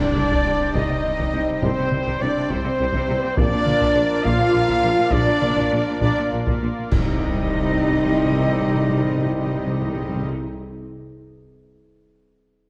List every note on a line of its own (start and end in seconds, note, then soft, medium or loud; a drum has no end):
0.00 0.71 C3 loud
0.00 0.07 C3 medium
0.00 3.33 G3 medium
0.00 3.35 G3 medium
0.00 3.34 C4 medium
0.00 0.73 D4 loud
0.00 0.76 D4 loud
0.00 3.33 G4 medium
0.00 3.33 C5 medium
0.00 0.73 D5 loud
0.00 0.75 D5 loud
0.00 0.76 D5 loud
0.00 0.77 D5 loud
0.00 3.33 G5 medium
0.16 0.22 C2 medium
0.16 0.22 C3 medium
0.16 taiko mid medium
0.31 0.37 C3 medium
0.31 taiko medium
0.46 0.52 C2 medium
0.46 0.51 C3 medium
0.60 0.66 C3 medium
0.74 0.81 C2 medium
0.74 0.81 C3 medium
0.74 1.63 D#4 loud
0.74 1.62 D#4 medium
0.74 1.63 D#5 loud
0.74 1.46 D#5 medium
0.74 1.62 D#5 medium
0.74 1.64 D#5 medium
0.74 taiko loud
0.90 0.96 C3 medium
0.90 taiko rim soft
1.04 1.10 C2 medium
1.04 1.11 C2 medium
1.04 1.11 C3 medium
1.20 1.25 C3 medium
1.20 taiko medium
1.33 1.39 C2 medium
1.33 1.40 C2 medium
1.33 1.40 C3 medium
1.48 1.54 C3 medium
1.63 1.69 C2 medium
1.63 1.70 C2 loud
1.63 1.69 C3 medium
1.63 2.20 C4 loud
1.63 2.22 C4 medium
1.63 2.23 C5 loud
1.63 2.23 C5 medium
1.63 2.22 C5 medium
1.63 2.21 C5 loud
1.63 taiko loud
1.78 1.84 C3 medium
1.92 1.98 C2 medium
1.92 1.98 C3 medium
1.92 taiko mid medium
2.07 2.13 C3 loud
2.07 taiko medium
2.21 2.28 C2 medium
2.21 2.28 C3 medium
2.21 2.50 D4 medium
2.21 2.50 D4 loud
2.21 2.50 D5 medium
2.21 2.52 D5 medium
2.21 2.50 D5 loud
2.21 2.51 D5 loud
2.36 2.42 C3 medium
2.50 2.56 C2 medium
2.50 2.57 C2 medium
2.50 2.56 C3 loud
2.50 3.37 C4 loud
2.50 3.38 C4 loud
2.50 3.36 C5 medium
2.50 3.39 C5 loud
2.50 3.38 C5 medium
2.50 3.38 C5 loud
2.50 taiko medium
2.65 2.70 C3 medium
2.65 taiko rim soft
2.79 2.85 C2 medium
2.79 2.86 C2 medium
2.79 2.85 C3 medium
2.94 3.00 C3 loud
2.94 taiko medium
3.08 3.14 C2 medium
3.08 3.15 C2 medium
3.08 3.15 C3 medium
3.23 3.29 C3 medium
3.23 taiko rim soft
3.37 3.43 A#1 loud
3.37 3.45 A#1 loud
3.37 3.44 A#2 loud
3.37 6.58 F3 medium
3.37 6.92 A#3 medium
3.37 6.62 A#3 loud
3.37 4.24 D4 loud
3.37 6.92 F4 loud
3.37 6.92 A#4 medium
3.37 4.25 D5 loud
3.37 4.26 D5 loud
3.37 4.23 D5 loud
3.37 6.92 D5 loud
3.37 4.23 D5 loud
3.37 taiko loud
3.53 3.58 A#2 medium
3.66 3.72 A#1 medium
3.66 3.73 A#1 medium
3.66 3.72 A#2 medium
3.66 taiko mid medium
3.81 3.87 A#2 loud
3.81 taiko medium
3.95 4.02 A#1 loud
3.95 4.02 A#1 medium
3.95 4.01 A#2 medium
4.10 4.16 A#2 medium
4.24 4.30 A#1 loud
4.24 4.31 A#1 loud
4.24 4.30 A#2 loud
4.24 5.10 F4 loud
4.24 5.12 F4 loud
4.24 5.13 F5 loud
4.24 taiko loud
4.39 4.45 A#2 medium
4.39 taiko rim soft
4.54 4.60 A#1 medium
4.54 4.60 A#2 medium
4.68 4.74 A#2 loud
4.68 taiko medium
4.83 4.89 A#1 medium
4.83 4.89 A#2 medium
4.98 5.04 A#2 medium
5.12 5.18 A#1 loud
5.12 5.19 A#1 loud
5.12 5.19 A#2 loud
5.12 5.99 D4 loud
5.12 6.01 D4 loud
5.12 5.73 D5 loud
5.12 6.00 D5 loud
5.12 5.72 D5 loud
5.12 6.01 D5 loud
5.12 taiko loud
5.28 5.33 A#2 medium
5.42 5.48 A#1 medium
5.42 5.49 A#1 medium
5.42 5.48 A#2 medium
5.42 taiko mid medium
5.57 5.63 A#2 loud
5.57 taiko medium
5.72 5.78 A#1 medium
5.72 5.78 A#2 medium
5.87 5.93 A#2 loud
6.01 6.07 A#1 loud
6.01 6.08 A#1 loud
6.01 6.08 A#2 loud
6.01 6.30 D4 loud
6.01 6.31 D4 loud
6.01 6.29 D5 loud
6.01 6.31 D5 loud
6.01 6.30 D5 loud
6.01 taiko medium
6.17 6.23 A#2 medium
6.32 6.38 A#1 medium
6.32 6.38 A#2 medium
6.47 6.54 A#2 loud
6.47 taiko loud
6.62 6.68 A#1 medium
6.62 6.69 A#1 medium
6.62 6.69 A#2 medium
6.78 6.84 A#2 medium
6.91 10.30 C2 medium
6.91 6.99 C3 loud
6.91 10.31 C3 medium
6.91 10.30 G3 medium
6.91 10.29 C4 medium
6.91 10.31 C4 medium
6.91 10.29 D#4 medium
6.91 10.29 D#4 loud
6.91 10.31 D#4 loud
6.91 10.29 G4 medium
6.91 10.29 D#5 medium
6.91 10.30 D#5 loud
6.91 10.30 D#5 medium
6.91 concert bass drum medium
6.91 taiko loud
6.91 crash medium
6.99 7.06 C3 loud
7.06 7.13 C3 loud
7.13 7.19 C3 loud
7.19 7.26 C3 loud
7.26 7.33 C3 medium
7.34 7.40 C3 loud
7.40 7.48 C3 loud
7.48 7.55 C3 loud
7.55 7.62 C3 medium
7.62 7.69 C3 loud
7.69 7.76 C3 loud
7.76 7.83 C3 loud
7.83 7.90 C3 loud
7.91 7.98 C3 loud
7.98 8.05 C3 medium
8.05 8.12 C3 loud
8.12 8.19 C3 loud
8.19 8.25 C3 medium
8.25 8.32 C3 loud
8.32 8.39 C3 loud
8.40 8.47 C3 loud
8.54 8.61 C3 medium
8.61 8.68 C3 loud
8.68 8.75 C3 loud
8.75 8.82 C3 loud
8.82 8.89 C3 medium
8.89 8.96 C3 loud
8.96 9.03 C3 medium
9.04 9.11 C3 loud
9.11 9.18 C3 medium
9.18 9.24 C3 medium
9.24 9.31 C3 medium
9.31 9.38 C3 loud
9.39 9.45 C3 loud
9.45 9.52 C3 loud
9.53 9.60 C3 loud
9.60 9.67 C3 loud
9.67 9.74 C3 loud
9.74 9.81 C3 loud
9.81 9.88 C3 loud
9.88 9.94 C3 loud
9.94 10.01 C3 medium
10.01 10.08 C3 loud
10.09 10.15 C3 medium
10.15 10.22 C3 loud
10.23 10.30 C3 medium